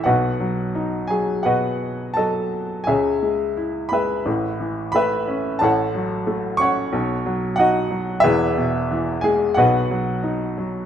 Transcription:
X:1
M:4/4
L:1/8
Q:1/4=89
K:Bmix
V:1 name="Upright piano"
[FBdf]3 [Gg] [FBdf]2 [Ada]2 | [Gceg]3 [Beb]3 [Beb]2 | [Acfa]3 [cfc']3 [Fdf]2 | [EGBe]3 [Gg] [FBdf]4 |]
V:2 name="Upright piano" clef=bass
[B,,,B,,] F, D F, B,,2 F,2 | [C,,C,] G, E G, [A,,,A,,] E, A, C | [A,,,A,,] F, A, C [B,,,B,,] F, D F, | [E,,,E,,] B,, E, G, [B,,,B,,] F, D F, |]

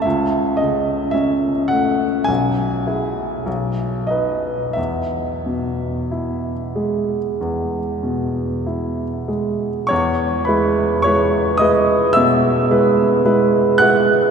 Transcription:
X:1
M:4/4
L:1/8
Q:1/4=52
K:E
V:1 name="Grand piano"
e d e f g3 d | e6- e z | [cc'] [Bb] [cc'] [dd'] [ee']3 [ff'] |]
V:2 name="Grand piano"
C,, C, C A, B,,, [EG] B,,, [DB] | E,, B,, E G, E,, B,, E G, | E,, [G,E] [G,EB] [G,EB] B,, [G,EB] [G,EB] [G,EB] |]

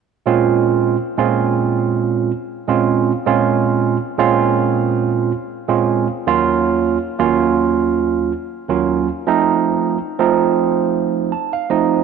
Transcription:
X:1
M:4/4
L:1/16
Q:"Swing 16ths" 1/4=80
K:Bbm
V:1 name="Tine electric piano"
z [B,,A,CDF]4 z [B,,A,CDF]6 z2 [B,,A,CDF]2 | z [B,,A,CDF]4 z [B,,A,CDF]6 z2 [B,,A,CDF]2 | z [E,,G,B,DF]4 z [E,,G,B,DF]6 z2 [E,,G,B,DF]2 | z [F,=A,CE]4 z [F,A,CE]6 =a f [F,A,CEe]2 |]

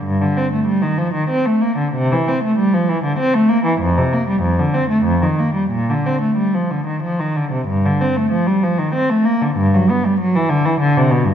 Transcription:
X:1
M:3/4
L:1/16
Q:1/4=95
K:Bb
V:1 name="Cello" clef=bass
G,, D, C A, G, E, F, E, C A, B, D, | C, =E, C A, G, F, E, D, C A, B, E, | F,, C, B, G, F,, D, C A, F,, E, B, G, | B,, D, C A, G, F, D, E, F, E, D, C, |
[K:Cdor] G,, D, C A, F, G, F, E, C A, B, D, | G,, ^F, =B, G, F, =E, D, E, D, C, =B,, G,, |]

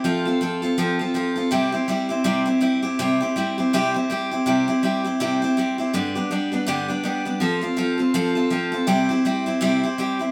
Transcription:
X:1
M:4/4
L:1/8
Q:"Swing" 1/4=163
K:C
V:1 name="Steel-string acoustic guitar"
[F,CFA] [CFA] [F,CFA] [CFA] [F,CFA] [CFA] [F,CFA] [CFA] | [C,G,CEG] [CEG] [G,CEG] [CEG] [C,G,CEG] [CEG] [G,CEG] [CEG] | [C,G,CEG] [CEG] [G,CEG] [CEG] [C,G,CEG] [CEG] [G,CEG] [CEG] | [C,G,CEG] [CEG] [G,CEG] [CEG] [C,G,CEG] [CEG] [G,CEG] [CEG] |
[G,,D,G,B,DG] [G,B,DG] [G,B,DG] [G,B,DG] [G,,D,G,B,DG] [G,B,DG] [G,B,DG] [G,B,DG] | [F,CFA] [CFA] [F,CFA] [CFA] [F,CFA] [CFA] [F,CFA] [CFA] | [C,G,CEG] [CEG] [G,CEG] [CEG] [C,G,CEG] [CEG] [G,CEG] [CEG] |]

